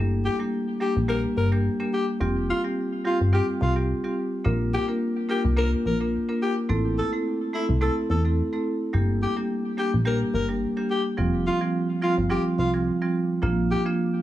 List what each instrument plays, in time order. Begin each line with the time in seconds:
Already playing: analog synth bass G1, marimba G3 A#3 D4 G4
0.25 alto saxophone G4
0.39 marimba G3 A#3 D4 G4
0.80 marimba G3 A#3 D4 G4, alto saxophone G4
0.96 analog synth bass A#1
1.08 marimba G3 A#3 D4 G4, alto saxophone A#4
1.36 analog synth bass G1, alto saxophone A#4
1.52 marimba G3 A#3 D4 G4
1.80 marimba G3 A#3 D4 G4
1.94 alto saxophone G4
2.20 analog synth bass F1, marimba G3 C4 F4 G4
2.50 alto saxophone F4
2.64 marimba G3 C4 F4 G4
3.05 marimba G3 C4 F4 G4, alto saxophone F4
3.20 analog synth bass G1
3.33 marimba G3 C4 F4 G4, alto saxophone G4
3.61 analog synth bass C2, alto saxophone F4
3.76 marimba G3 C4 F4 G4
4.04 marimba G3 C4 F4 G4
4.44 analog synth bass A#1, marimba A#3 D4 F4 A#4
4.74 alto saxophone G4
4.88 marimba A#3 D4 F4 A#4
5.29 marimba A#3 D4 F4 A#4, alto saxophone G4
5.44 analog synth bass C2
5.57 marimba A#3 D4 F4 A#4, alto saxophone A#4
5.85 analog synth bass A#1, alto saxophone A#4
6.00 marimba A#3 D4 F4 A#4
6.29 marimba A#3 D4 F4 A#4
6.42 alto saxophone G4
6.69 analog synth bass A1, marimba A3 C4 E4 A4
6.98 alto saxophone A4
7.13 marimba A3 C4 E4 A4
7.53 marimba A3 C4 E4 A4, alto saxophone E4
7.69 analog synth bass C2
7.81 marimba A3 C4 E4 A4, alto saxophone A4
8.09 analog synth bass E2, alto saxophone A4
8.25 marimba A3 C4 E4 A4
8.53 marimba A3 C4 E4 A4
8.93 analog synth bass G1, marimba G3 A#3 D4 G4
9.23 alto saxophone G4
9.36 marimba G3 A#3 D4 G4
9.77 marimba G3 A#3 D4 G4, alto saxophone G4
9.93 analog synth bass A#1
10.05 marimba G3 A#3 D4 G4, alto saxophone A#4
10.34 analog synth bass G1, alto saxophone A#4
10.49 marimba G3 A#3 D4 G4
10.77 marimba G3 A#3 D4 G4
10.90 alto saxophone G4
11.17 analog synth bass F1, marimba F3 G3 C4 F4
11.47 alto saxophone F4
11.61 marimba F3 G3 C4 F4
12.02 marimba F3 G3 C4 F4, alto saxophone F4
12.18 analog synth bass G1
12.30 marimba F3 G3 C4 F4, alto saxophone G4
12.58 analog synth bass C2, alto saxophone F4
12.73 marimba F3 G3 C4 F4
13.02 marimba F3 G3 C4 F4
13.42 analog synth bass A#1, marimba F3 A#3 D4 F4
13.71 alto saxophone G4
13.86 marimba F3 A#3 D4 F4